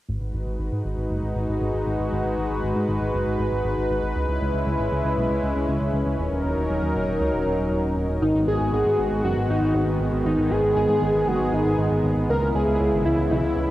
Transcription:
0.09 0.19 G#1 loud
0.09 4.12 G#3 medium
0.09 4.12 D#4 medium
0.09 4.12 F#4 medium
0.09 6.15 B4 medium
0.21 0.32 G#1 medium
0.34 0.44 G#1 medium
0.47 0.57 G#1 medium
0.59 0.70 G#1 loud
0.72 0.83 G#2 medium
0.85 0.95 G#1 medium
0.97 1.08 G#1 medium
1.10 1.21 F#1 medium
1.23 1.33 G#1 medium
1.36 1.46 G#1 medium
1.49 1.59 G#1 medium
1.61 1.72 G#1 loud
1.74 1.84 G#1 medium
1.87 1.97 G#1 medium
1.99 2.10 G#1 medium
2.12 2.23 G#1 loud
2.25 2.35 G#1 medium
2.38 2.48 G#1 medium
2.51 2.61 G#1 medium
2.63 2.73 G#1 medium
2.76 2.86 G#2 medium
2.89 2.99 G#1 medium
3.01 3.12 G#1 medium
3.14 3.24 F#1 medium
3.27 3.37 G#1 medium
3.39 3.50 G#1 medium
3.52 3.62 G#1 medium
3.65 3.75 G#1 loud
3.78 3.88 G#1 medium
3.90 4.00 G#1 medium
4.03 4.13 G#1 medium
4.16 4.26 C#2 loud
4.16 6.17 G#3 medium
4.16 8.18 C#4 medium
4.16 6.17 E4 medium
4.29 4.39 C#2 medium
4.41 4.51 C#2 medium
4.54 4.64 C#2 medium
4.66 4.77 C#2 loud
4.79 4.90 G#1 medium
4.92 5.02 C#2 medium
5.05 5.15 C#2 medium
5.18 5.28 B1 medium
5.30 5.40 C#2 medium
5.43 5.53 C#2 medium
5.56 5.66 C#2 medium
5.68 5.78 C#2 loud
5.81 5.91 C#2 medium
5.93 6.04 C#2 medium
6.06 6.16 C#2 medium
6.19 6.29 D#1 loud
6.19 8.20 F#3 medium
6.19 8.20 D#4 medium
6.19 8.20 A#4 medium
6.32 6.42 D#1 medium
6.44 6.55 D#1 medium
6.57 6.67 D#1 medium
6.70 6.80 D#1 loud
6.82 6.93 D#2 medium
6.95 7.06 D#1 medium
7.08 7.18 D#1 medium
7.20 7.31 C#2 medium
7.33 7.44 D#1 medium
7.46 7.56 D#1 medium
7.59 7.69 D#1 medium
7.71 7.82 D#1 loud
7.84 7.94 D#1 medium
7.97 8.07 D#1 medium
8.09 8.20 D#1 medium
8.22 8.32 G#1 loud
8.22 12.25 D#3 medium
8.22 13.71 G#3 medium
8.22 13.71 B3 medium
8.22 8.46 D#4 loud
8.22 10.24 F#4 medium
8.35 8.45 G#1 medium
8.48 8.58 G#1 medium
8.48 8.72 G#4 loud
8.60 8.71 G#1 medium
8.73 8.83 G#1 loud
8.73 9.21 G#4 loud
8.86 8.96 G#2 medium
8.99 9.09 G#1 medium
9.11 9.22 G#1 medium
9.24 9.34 F#1 loud
9.24 9.48 F#4 loud
9.37 9.47 G#1 medium
9.49 9.60 G#1 medium
9.49 9.97 D#4 medium
9.62 9.72 G#1 medium
9.74 9.85 G#1 loud
9.87 9.98 G#1 medium
10.00 10.10 G#1 medium
10.13 10.23 G#1 medium
10.25 10.36 G#1 loud
10.25 10.53 D#4 medium
10.25 12.27 G#4 medium
10.38 10.49 G#1 medium
10.51 10.61 G#1 medium
10.51 10.76 G#4 loud
10.64 10.74 G#1 medium
10.76 10.87 G#1 loud
10.76 11.29 G#4 loud
10.89 10.99 G#2 medium
11.02 11.12 G#1 medium
11.15 11.25 G#1 medium
11.27 11.38 F#1 medium
11.27 11.55 F#4 loud
11.40 11.50 G#1 medium
11.53 11.63 G#1 medium
11.53 12.04 D#4 medium
11.65 11.76 G#1 medium
11.78 11.89 G#1 loud
11.91 12.01 G#1 medium
12.04 12.14 G#1 medium
12.17 12.27 G#1 medium
12.29 12.39 C#2 loud
12.29 13.71 C#3 medium
12.29 13.71 E4 medium
12.29 12.53 A#4 loud
12.42 12.52 C#2 medium
12.55 12.65 C#2 medium
12.55 13.02 G#4 loud
12.67 12.78 C#2 medium
12.80 12.90 C#2 loud
12.93 13.03 G#1 medium
13.05 13.16 C#2 medium
13.05 13.29 E4 medium
13.18 13.28 C#2 medium
13.31 13.41 B1 loud
13.31 13.71 E4 medium
13.43 13.54 C#2 medium
13.56 13.66 C#2 medium

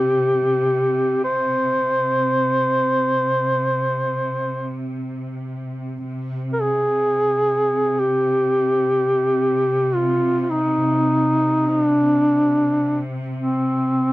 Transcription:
0.00 6.05 C3 soft
0.00 1.21 G4 medium
1.24 4.85 C5 medium
6.07 14.13 C3 soft
6.53 6.63 A#4 soft
6.61 8.01 G#4 medium
7.99 9.96 G4 medium
9.95 10.42 F4 medium
10.42 10.51 F4 soft
10.50 11.69 D#4 medium
11.69 11.82 D#4 medium
11.82 13.03 D4 medium
13.35 14.13 C4 medium

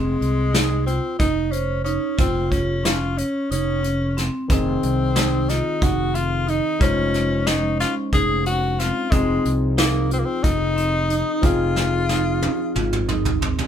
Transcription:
0.00 0.15 F1 medium
0.00 0.83 G#3 medium
0.00 0.43 C4 medium
0.21 0.98 C2 medium
0.21 closed hi-hat soft
0.53 0.81 D#4 medium
0.53 snare loud
0.53 closed hi-hat medium
0.86 1.18 C4 medium
0.86 1.14 F4 medium
0.86 closed hi-hat medium
1.19 1.97 F1 medium
1.19 1.47 D#4 medium
1.19 1.53 D#4 medium
1.19 kick medium
1.19 closed hi-hat medium
1.52 1.84 C#4 medium
1.52 1.80 C5 medium
1.52 closed hi-hat medium
1.84 2.16 C#4 medium
1.84 2.13 D#4 medium
1.84 closed hi-hat medium
2.18 3.22 F1 medium
2.18 2.53 C4 medium
2.18 2.73 F4 medium
2.18 kick loud
2.18 closed hi-hat medium
2.52 2.87 C#4 medium
2.52 kick medium
2.52 closed hi-hat medium
2.84 3.11 C#4 medium
2.84 3.19 F4 medium
2.84 snare loud
2.84 closed hi-hat medium
3.17 3.45 C#4 medium
3.17 3.51 C#4 medium
3.17 closed hi-hat medium
3.51 4.28 F1 medium
3.51 4.21 C#4 medium
3.51 3.78 D#4 medium
3.51 closed hi-hat medium
3.83 4.11 C#4 medium
3.83 closed hi-hat medium
4.17 4.44 C4 medium
4.17 snare soft
4.17 closed hi-hat medium
4.48 4.76 F1 medium
4.48 6.76 D#3 medium
4.48 6.76 C4 medium
4.48 5.04 C4 medium
4.48 5.51 C4 medium
4.48 6.77 D#4 medium
4.48 6.78 G#4 medium
4.48 kick loud
4.48 closed hi-hat medium
4.83 5.60 C2 medium
4.83 closed hi-hat medium
5.15 5.43 D#4 medium
5.15 snare loud
5.15 closed hi-hat medium
5.49 5.85 D#4 medium
5.49 5.76 F4 medium
5.49 snare soft
5.49 closed hi-hat medium
5.81 6.59 F1 medium
5.81 6.09 D#4 medium
5.81 6.17 F#4 medium
5.81 kick loud
5.81 closed hi-hat medium
6.14 6.41 C4 medium
6.14 6.51 F4 medium
6.14 closed hi-hat medium
6.47 6.74 D#4 medium
6.47 6.81 D#4 medium
6.47 closed hi-hat medium
6.79 7.84 F1 medium
6.79 9.07 G#3 medium
6.79 9.08 C#4 medium
6.79 7.48 C#4 loud
6.79 9.08 D#4 medium
6.79 7.35 F4 medium
6.79 kick loud
6.79 closed hi-hat medium
6.84 9.09 C5 medium
7.14 snare soft
7.14 closed hi-hat medium
7.47 7.74 C#4 medium
7.47 7.80 D#4 medium
7.47 snare loud
7.47 closed hi-hat medium
7.80 8.07 C#4 medium
7.80 7.95 F4 medium
7.80 snare soft
7.80 closed hi-hat medium
8.13 8.90 F1 medium
8.13 8.40 D#4 medium
8.13 8.44 G#4 loud
8.13 kick medium
8.13 closed hi-hat medium
8.45 8.72 C#4 medium
8.45 8.82 F#4 loud
8.45 closed hi-hat medium
8.79 9.06 C4 medium
8.79 9.13 F4 medium
8.79 snare soft
8.79 closed hi-hat medium
9.12 9.37 F1 medium
9.12 11.39 F3 medium
9.12 9.51 G#3 medium
9.12 9.66 C4 medium
9.12 11.40 C4 medium
9.12 11.40 D#4 medium
9.12 11.41 G#4 medium
9.12 kick loud
9.12 closed hi-hat medium
9.45 10.22 C2 medium
9.45 closed hi-hat medium
9.78 10.09 A#3 medium
9.78 10.05 D#4 medium
9.78 snare loud
9.78 closed hi-hat medium
10.10 10.21 C4 medium
10.10 10.38 F4 medium
10.10 closed hi-hat medium
10.19 10.27 A#3 medium
10.25 10.45 C4 medium
10.43 11.21 F1 medium
10.43 11.47 D#4 loud
10.43 10.71 D#4 medium
10.43 kick loud
10.43 closed hi-hat medium
10.76 11.04 C4 medium
10.76 closed hi-hat medium
11.09 11.37 D#4 medium
11.09 closed hi-hat medium
11.41 12.46 F1 medium
11.41 13.67 F3 medium
11.41 13.67 C4 medium
11.41 13.67 D#4 medium
11.41 11.97 F4 medium
11.41 kick loud
11.41 closed hi-hat medium
11.45 13.10 F4 loud
11.45 13.67 G#4 medium
11.76 snare medium
12.09 12.36 D#4 medium
12.09 snare medium
12.42 12.70 D#4 medium
12.42 high tom medium
12.75 13.53 G#1 medium
12.75 13.03 F4 medium
12.75 mid tom medium
12.93 mid tom medium
13.08 13.36 D#4 medium
13.08 mid tom medium
13.25 floor tom medium
13.41 13.67 C4 medium
13.41 floor tom medium
13.59 floor tom medium

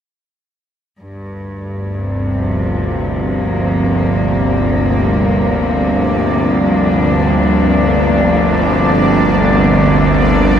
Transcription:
1.00 10.60 G1 medium
1.00 10.60 D2 medium
1.00 10.60 G2 medium
1.00 10.60 D5 medium
1.92 10.60 C3 medium
2.34 10.60 F3 medium
3.32 10.60 A#3 medium
6.63 10.60 D4 medium

